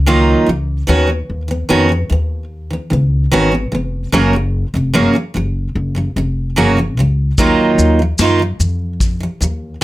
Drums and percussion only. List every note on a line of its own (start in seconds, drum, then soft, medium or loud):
7.38 kick loud
7.38 shaker medium
7.79 shaker soft
8.18 snare loud
8.18 shaker medium
8.60 shaker soft
9.00 kick medium
9.00 shaker medium
9.42 shaker soft